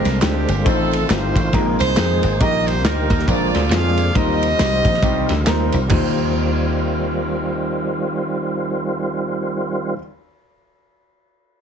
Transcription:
Already playing: D3 G#3 A#3 C4 D4 F4 A#4
0.05 C2, snare, ride, tambourine
0.21 D2 G#3 C4 D4 F4 G4, snare, clap, ride, tambourine
0.49 G1, ride, tambourine
0.65 A1 A2 D#3 A3 C4 D#4 F4 A4 C5, kick, ride, tambourine
0.91 ride, tambourine
1.08 G1 A3 C4 D#4 F4 G4 C5, snare, clap, ride, tambourine
1.36 A1, kick, ride, tambourine
1.52 A#1 A#2 G#3 A#3 C4 D#4 F4 G#4 A#4, kick, ride, tambourine
1.79 C2 D#4 G#4 C5, snare, ride, tambourine
1.96 F2 G#3 C4 D#4 F4 G#4, snare, clap, ride, tambourine
2.23 G#1, ride, tambourine
2.40 A#1 A#2 G3 D#4 G4 A#4 D#5, kick, ride, tambourine
2.67 C5, ride, tambourine
2.84 D2 D#4 G4 A#4 C5, snare, clap, ride, tambourine
3.10 D#2, kick, ride, tambourine
3.19 snare
3.28 A#1 A#2 D3 G#3 C4 D4 F4 G#4 A#4 D5, kick, ride, tambourine
3.55 D2, snare, ride, tambourine
3.71 F2 G#3 C4 D4 F4 G#4 D5 F5, snare, clap, ride, tambourine
3.97 ride, tambourine
4.15 D#2 D#3 G3 C4 D#4 F4 G4 A#4 C5 D#5, kick, ride, tambourine
4.41 ride, tambourine
4.59 C2 G3 C4 D#4 F4 G4, snare, clap, ride, tambourine
4.85 A#1, kick, ride, tambourine
4.94 snare
5.02 C2 G3 C4 D#4 F4 G4, kick, ride, tambourine
5.29 D2, snare, ride, tambourine
5.46 D#2 G3 C4 D#4 F4 A#4, snare, clap, ride, tambourine
5.72 C2, ride, tambourine
5.88 D#2 D#3 G3 C4 D#4 F4, kick, clap, floor tom, crash
5.94 C5

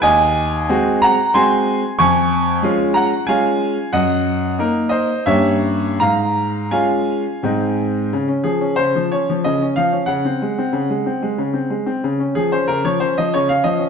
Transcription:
0.02 D#2 D#5 G#5
0.69 G#3 C4 F#4
1.02 F#5 A#5
1.34 G#3 C4 F#4 G#5 C6
1.99 F2 G#5 C#6
2.63 G#3 C#4 F4
2.94 F#5 A#5
3.27 G#3 C#4 F4 F5 G#5
3.93 F#2 D#5 F#5
4.59 A#3 D#4 A#4
4.89 C5 D#5
5.26 G2 A#3 C#4 G4 C#5 E5
6.00 G#2 F5 A#5
6.71 G#3 C#4 F4 F5 G#5
7.43 G#2 G#3 C4 D#4
8.13 C#3
8.28 C#4
8.44 F3 G#4
8.61 C#4
8.76 C#3 C5
8.96 F3
9.12 C#4 C#5
9.29 F3
9.44 C#3 D#5
9.62 C#4
9.76 F3 F5
9.92 C#4
10.06 C#3 F#5
10.25 C4
10.42 G#3
10.58 C4
10.73 C#3
10.90 G#3
11.06 C4
11.23 G#3
11.38 C#3
11.54 C4
11.70 G#3
11.86 C4
12.04 C#3
12.20 C#4
12.35 F3 G#4
12.52 C#4 C5
12.68 C#3 A#4
12.85 F3 C#5
13.00 C#4 C5
13.18 F3 D#5
13.34 C#3 C#5
13.49 C#4 F5
13.64 F3 D#5
13.79 C#4

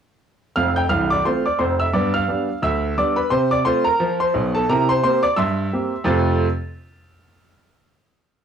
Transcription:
0.56 F1 F2 F5 F6
0.76 G5 G6
0.89 C1 C2 F5 F6
1.10 D5 D6
1.25 A3 C4 F4 C5 C6
1.46 D5 D6
1.59 F1 F2 C5 C6
1.80 E5 E6
1.93 G2 B3 D5 D6
2.14 F5 F6
2.28 G3 B3 D4
2.62 D2 E5 E6
2.98 G3 B3 D4 D5 D6
3.16 B4 B5
3.30 C3 C5 C6
3.51 D5 D6
3.65 A3 C4 F4 C5 C6
3.85 A#4 A#5
4.00 F3
4.20 C5 C6
4.34 B1 B2
4.55 A4 A5
4.69 C3 E4 A#4 A#5
4.89 C5 C6
5.03 A#3 C4 G4 C5 C6
5.23 D5 D6
5.36 G2 E5 C6 E6
5.73 A#3 C4 G4
6.04 F2 C3 A3 C4 F4 A4 A6

